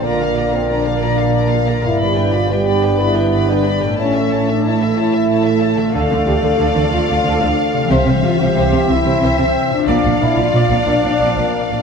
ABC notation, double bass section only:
X:1
M:12/8
L:1/8
Q:3/8=122
K:Bblyd
V:1 name="Double bass section" clef=bass
B,,,12 | G,,,12 | A,,,12 | D,, D,, D,, D,, D,, D,, D,, D,, D,, D,, z2 |
C,, C,, C,, C,, C,, C,, C,, C,, C,, C,, z2 | B,,, B,,, B,,, B,,, B,,, B,,, B,,, B,,, B,,, B,,, z2 |]